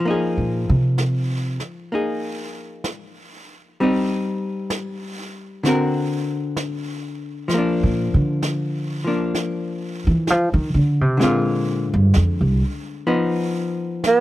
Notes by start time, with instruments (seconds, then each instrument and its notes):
0.00 hollow-body jazz guitar F3, brush sweep
0.05 hollow-body jazz guitar A#3 D#4
0.10 hollow-body jazz guitar G#4
0.37 upright bass A#2
0.69 upright bass C3
0.98 brush sweep, snare
1.60 snare
1.91 hollow-body jazz guitar A#3 D#4, brush sweep
1.95 hollow-body jazz guitar G#4
2.84 brush sweep, snare
3.78 hollow-body jazz guitar G3 C4, brush sweep
3.83 hollow-body jazz guitar D#4
4.70 brush sweep, snare
5.63 hollow-body jazz guitar D3 C4 F#4, brush sweep, snare
5.69 hollow-body jazz guitar A#4
6.57 brush sweep, snare
7.48 hollow-body jazz guitar F3, brush sweep, snare
7.54 hollow-body jazz guitar A#3 D4
7.83 upright bass A#2
8.14 upright bass D3
8.42 brush sweep, snare
9.04 hollow-body jazz guitar F3 A#3 D4
9.35 brush sweep, snare
10.07 upright bass E3
10.27 upright bass F3, brush sweep, snare
10.54 upright bass D#3
10.74 upright bass D3
11.01 upright bass C3
11.17 hollow-body jazz guitar D3 G#3 C4, brush sweep, snare
11.23 upright bass A#2, hollow-body jazz guitar F4
11.94 upright bass G2
12.14 upright bass F2, brush sweep, snare
12.41 upright bass C2
13.07 hollow-body jazz guitar F3 B3 D#4, brush sweep
14.04 tenor saxophone B3, brush sweep, snare